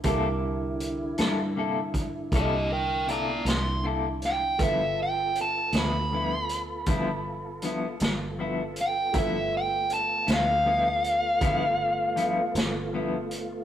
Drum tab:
HH |x-xx-xx-xx-x|x-xx-xx-xx-x|x-xx-xx-xx-x|
SD |---o-----o-o|---o-----o--|---o-----o--|
BD |o----oo-----|o-----o-----|o-----o-----|